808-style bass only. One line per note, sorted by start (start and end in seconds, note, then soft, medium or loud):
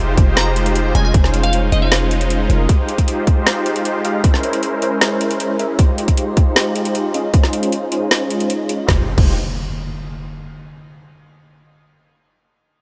0.00 0.16 F1 loud
0.18 0.93 F1 loud
0.95 1.12 F1 medium
1.14 1.70 F1 medium
1.72 2.48 F1 medium
2.50 2.67 F1 loud
8.89 8.99 F1 loud
9.18 9.36 F1 loud